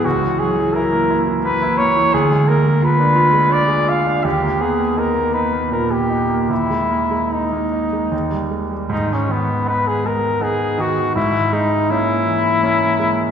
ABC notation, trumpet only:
X:1
M:3/4
L:1/16
Q:1/4=81
K:G#m
V:1 name="Trumpet"
F2 G2 A3 z B2 c2 | _A2 ^A2 B4 =d2 =f2 | =G2 ^G2 A2 B2 A =G3 | E4 D6 z2 |
D C B,2 B G A2 G2 F2 | E2 D2 E8 |]